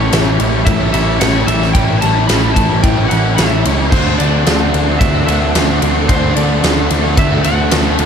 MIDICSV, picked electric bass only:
0, 0, Header, 1, 2, 480
1, 0, Start_track
1, 0, Tempo, 542495
1, 1549, Time_signature, 4, 2, 24, 8
1, 7128, End_track
2, 0, Start_track
2, 0, Title_t, "Picked electric bass"
2, 0, Program_c, 0, 34
2, 110, Note_on_c, 0, 33, 101
2, 323, Note_off_c, 0, 33, 0
2, 352, Note_on_c, 0, 33, 97
2, 564, Note_off_c, 0, 33, 0
2, 590, Note_on_c, 0, 33, 96
2, 803, Note_off_c, 0, 33, 0
2, 829, Note_on_c, 0, 33, 98
2, 1042, Note_off_c, 0, 33, 0
2, 1067, Note_on_c, 0, 33, 82
2, 1281, Note_off_c, 0, 33, 0
2, 1303, Note_on_c, 0, 33, 91
2, 1519, Note_off_c, 0, 33, 0
2, 1550, Note_on_c, 0, 33, 98
2, 1763, Note_off_c, 0, 33, 0
2, 1793, Note_on_c, 0, 33, 89
2, 2004, Note_off_c, 0, 33, 0
2, 2029, Note_on_c, 0, 33, 92
2, 2242, Note_off_c, 0, 33, 0
2, 2273, Note_on_c, 0, 33, 90
2, 2484, Note_off_c, 0, 33, 0
2, 2512, Note_on_c, 0, 33, 88
2, 2724, Note_off_c, 0, 33, 0
2, 2758, Note_on_c, 0, 33, 88
2, 2967, Note_off_c, 0, 33, 0
2, 2997, Note_on_c, 0, 33, 93
2, 3207, Note_off_c, 0, 33, 0
2, 3238, Note_on_c, 0, 37, 89
2, 3447, Note_off_c, 0, 37, 0
2, 3474, Note_on_c, 0, 38, 91
2, 3685, Note_off_c, 0, 38, 0
2, 3717, Note_on_c, 0, 38, 90
2, 3927, Note_off_c, 0, 38, 0
2, 3955, Note_on_c, 0, 38, 87
2, 4166, Note_off_c, 0, 38, 0
2, 4197, Note_on_c, 0, 38, 89
2, 4407, Note_off_c, 0, 38, 0
2, 4434, Note_on_c, 0, 38, 88
2, 4645, Note_off_c, 0, 38, 0
2, 4674, Note_on_c, 0, 38, 88
2, 4885, Note_off_c, 0, 38, 0
2, 4912, Note_on_c, 0, 38, 92
2, 5124, Note_off_c, 0, 38, 0
2, 5151, Note_on_c, 0, 38, 98
2, 5363, Note_off_c, 0, 38, 0
2, 5391, Note_on_c, 0, 38, 100
2, 5603, Note_off_c, 0, 38, 0
2, 5634, Note_on_c, 0, 38, 87
2, 5845, Note_off_c, 0, 38, 0
2, 5872, Note_on_c, 0, 38, 93
2, 6084, Note_off_c, 0, 38, 0
2, 6116, Note_on_c, 0, 38, 94
2, 6326, Note_off_c, 0, 38, 0
2, 6349, Note_on_c, 0, 38, 100
2, 6562, Note_off_c, 0, 38, 0
2, 6595, Note_on_c, 0, 38, 98
2, 6805, Note_off_c, 0, 38, 0
2, 6834, Note_on_c, 0, 38, 88
2, 7044, Note_off_c, 0, 38, 0
2, 7074, Note_on_c, 0, 38, 86
2, 7128, Note_off_c, 0, 38, 0
2, 7128, End_track
0, 0, End_of_file